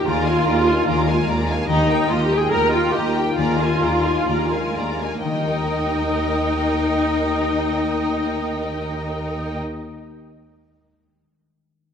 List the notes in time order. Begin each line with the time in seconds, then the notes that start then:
Already playing: A#5
0.05 D#2 D#3 F4 G#4 D5 A#5
0.25 D4 A#4 F5 G#5
0.45 D#2 D#4 G#4 D5 A#5
0.66 D4 A#4 F5 G#5
0.87 D#2 D#3 G#4 D5 A#5
1.08 G#3 A#4 F5 G#5
1.28 D#2 A#3 G#4 D5 A#5
1.48 D4 A#4 F5 G#5
1.68 D#2 D#3 D#4 G4 D#5 A#5
1.89 D#4 A#4 G5
2.09 D#2 F4 G4 D#5 A#5
2.24 G4
2.30 D#4 A#4 G5
2.38 G#4
2.51 D#2 G3 G4 A#4 D#5 A#5
2.72 D#4 F4 A#4 G5
2.93 D#2 F4 G4 D#5 A#5
3.16 D#4 A#4 G5
3.37 D#2 D#3 F4 G#4 D5 A#5
3.60 D4 A#4 F5 G#5
3.82 D#2 D#4 G#4 D5 A#5
4.05 D4 A#4 F5 G#5
4.27 D#2 D#3 G#4 D5 A#5
4.51 G#3 A#4 F5 G#5
4.74 D#2 A#3 G#4 D5 A#5
5.00 D4 A#4 F5 G#5
5.24 D#2 D#3 D#4 A#4 D#5 G5
5.32 G3
5.39 D#4
5.46 A#4
5.53 D#5